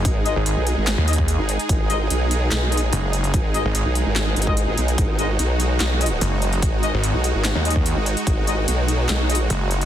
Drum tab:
HH |x---x---x---x---x---xx--x---x-x-|x---x---x---x---x---xx--x---x-x-|x---x---x---x---x---xx--x---x-x-|x---x---x---x---x---xx--x---x-x-|
CP |----------------x---------------|----------------x---------------|----------------x---------------|----------------x---------------|
SD |----------------o---------------|----------------o---------------|----------------o---------------|----------------o---------------|
BD |o---------------------o---------|o-------------------------------|o---------------------o---------|o-------------------------------|

HH |x---x---x---x---x---xx--x---x-x-|x---x---x---x---x---xx--x---x-x-|
CP |----------------x---------------|----------------x---------------|
SD |----------------o---------------|----------------o---------------|
BD |o---------------------o---------|o-------------------------------|